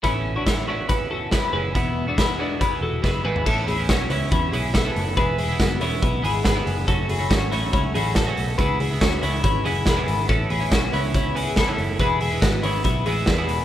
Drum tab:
CC |----------------|----------------|x---------------|----------------|
HH |x---x---x---x---|x---x---x-------|--o-x-o-x-o-x-o-|x-o-x-o-x-o-x-o-|
SD |----o-------o---|----o-------o---|----o-------o---|----o-------o---|
T2 |----------------|--------------o-|----------------|----------------|
FT |----------------|---------------o|----------------|----------------|
BD |o---o---o---o---|o---o---o---o---|o---o---o---o---|o---o---o---o---|

CC |----------------|----------------|----------------|----------------|
HH |x-o-x-o-x-o-x-o-|x-o-x-o-x-o-x-o-|x-o-x-o-x-o-x-o-|x-o-x-o-x-o-x-o-|
SD |----o-------o---|----o-------o---|----o-------o---|----o-------o---|
T2 |----------------|----------------|----------------|----------------|
FT |----------------|----------------|----------------|----------------|
BD |o---o---o---o---|o---o---o---o---|o---o---o---o---|o---o---o---o---|